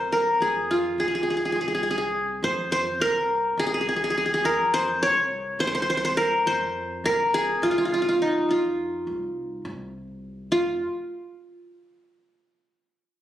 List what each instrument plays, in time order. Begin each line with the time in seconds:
Already playing: upright bass C2, qanun G#4 A#4 C5
0.12 qanun A#4
0.40 upright bass F2, qanun G#4
0.71 qanun F4
0.98 upright bass C2, qanun G#4
1.08 qanun G#4
1.15 qanun G#4
1.23 qanun G#4
1.30 qanun G#4
1.37 qanun G#4
1.45 qanun G#4
1.52 upright bass C2, qanun G#4
1.61 qanun G#4
1.68 qanun G#4
1.75 qanun G#4
1.83 qanun G#4
1.91 qanun G#4
1.98 qanun G#4
2.43 upright bass F2, qanun C5
2.72 qanun C5
3.00 upright bass C2, qanun A#4
3.57 upright bass C2, qanun G#4
3.67 qanun G#4
3.74 qanun G#4
3.81 qanun G#4
3.89 qanun G#4
3.96 qanun G#4
4.04 qanun G#4
4.10 qanun G#4
4.18 qanun G#4
4.26 qanun G#4
4.34 qanun G#4
4.44 upright bass F2, qanun A#4
4.74 qanun C5
5.02 upright bass C2, qanun C#5
5.59 upright bass C2, qanun C5
5.67 qanun C5
5.75 qanun C5
5.82 qanun C5
5.90 qanun C5
5.97 qanun C5
6.05 qanun C5
6.17 qanun A#4
6.46 upright bass F2, qanun C5
7.04 upright bass C2, qanun A#4
7.34 qanun G#4
7.62 upright bass C2, qanun F4
7.71 qanun F4
7.78 qanun F4
7.85 qanun F4
7.94 qanun F4
8.02 qanun F4
8.09 qanun F4
8.22 qanun D#4
8.49 upright bass F2, qanun F4
9.07 upright bass C2
9.65 upright bass C2
10.51 upright bass F1, qanun F4